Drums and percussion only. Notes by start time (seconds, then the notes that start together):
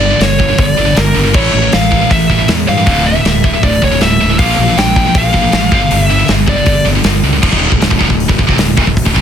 0.21 snare, open hi-hat
0.40 kick
0.58 kick, open hi-hat
0.97 snare, open hi-hat
1.34 kick, crash
1.72 snare, open hi-hat
1.92 kick
2.11 kick, open hi-hat
2.30 kick
2.48 snare, open hi-hat
2.86 kick, open hi-hat
3.25 snare, open hi-hat
3.44 kick
3.63 kick, open hi-hat
3.82 kick
4.01 snare, open hi-hat
4.39 kick, open hi-hat
4.78 snare, open hi-hat
4.96 kick
5.14 kick, open hi-hat
5.34 kick
5.52 snare, open hi-hat
5.72 kick
5.91 open hi-hat
6.28 snare, open hi-hat
6.48 kick
6.66 kick, open hi-hat
7.04 snare, open hi-hat
7.43 kick, crash
7.53 kick
7.72 kick
7.82 snare, open hi-hat
7.91 kick
8.01 kick
8.10 kick
8.20 open hi-hat
8.29 kick
8.39 kick
8.49 kick
8.58 snare, open hi-hat
8.77 kick
8.87 kick
8.97 kick, open hi-hat
9.06 kick
9.16 kick